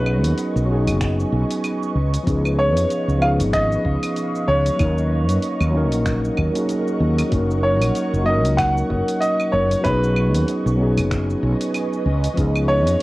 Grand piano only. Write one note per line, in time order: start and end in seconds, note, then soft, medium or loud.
0.00 0.33 B4 medium
2.59 3.24 C#5 loud
3.22 3.29 F5 loud
3.53 4.44 D#5 loud
4.48 6.97 C#5 loud
7.63 8.29 C#5 medium
8.26 8.59 D#5 loud
8.57 9.23 F#5 loud
9.20 9.54 D#5 loud
9.52 9.85 C#5 medium
9.84 10.44 B4 medium
12.68 13.03 C#5 loud